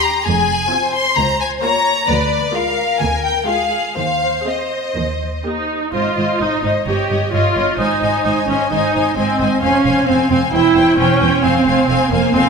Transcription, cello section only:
0.26 F2
1.18 C#2
2.08 D2
3.01 D2
3.96 D#2
4.96 D#2
5.94 G#2
6.17 G#2
6.40 G#2
6.64 G#2
6.87 G2
7.10 G2
7.32 G2
7.56 G2
7.78 G#2
8.02 G#2
8.25 G#2
8.48 G#2
8.71 G#2
8.94 G#2
9.17 G#2
9.40 G#2
9.63 F2
9.86 F2
10.08 F2
10.30 F2
10.52 E2
10.75 E2
10.99 E2
11.21 E2
11.44 F2
11.66 F2
11.88 F2
12.11 F2
12.34 F2

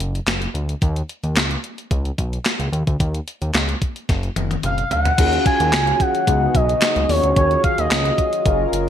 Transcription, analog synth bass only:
0.00 F#1
0.27 F#1
0.54 D2
0.82 D#2
1.23 D#2
1.36 C#2
1.91 C#2
2.18 B1
2.60 C#2
2.72 D#2
2.87 D2
3.00 D#2
3.42 D#2
3.54 C#2
4.09 F#1
4.36 F#1
4.64 F#1
4.91 D2
5.18 D#2
5.60 D#2
5.73 C#2
6.27 C#2
6.55 B1
6.96 C#2
7.09 D#2
7.24 D2
7.36 D#2
7.78 D#2
7.91 C#2
8.46 F#1
8.73 F#1

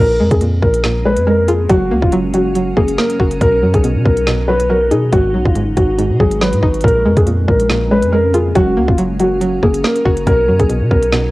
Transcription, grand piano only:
0.00 A#4
0.31 G#4
0.62 A#4
1.06 B4
1.27 A#4
1.48 G#4
1.70 F#4
2.02 F4
2.34 F#4
2.77 G#4
2.98 A#4
3.41 A#4
3.74 G#4
4.05 A#4
4.48 B4
4.69 A#4
4.91 G#4
5.13 F#4
5.45 F4
5.77 F#4
6.20 G#4
6.41 B4
6.84 A#4
7.17 G#4
7.48 A#4
7.91 B4
8.12 A#4
8.34 G#4
8.56 F#4
8.88 F4
9.20 F#4
9.63 G#4
9.84 A#4
10.27 A#4
10.60 G#4
10.91 A#4

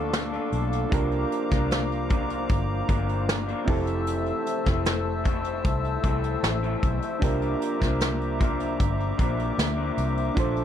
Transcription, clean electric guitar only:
Already playing: A#2 F3 A3 D4
0.32 A#2 F3 A3 D4
0.91 C3 F3 A#3 D4
1.50 F3 A#3 D4
2.09 C3 F3 A#3 D4
2.88 C3 F3 A#3 D4
3.48 C3 F3 A#3 D4
3.67 F2 C3 E3 A3 C4
4.65 E3 A3 C4
5.24 C3 E3 A3 C4
6.03 F2 C3 E3 A3 C4
6.63 F2 C3 E3 A3 C4
7.21 C3 F3 A#3 D4
7.80 F3 A#3 D4
8.39 C3 F3 A#3 D4
9.18 C3 F3 A#3 D4
9.76 C3 F3 A#3 D4
10.35 A#2 F3 A3 D4

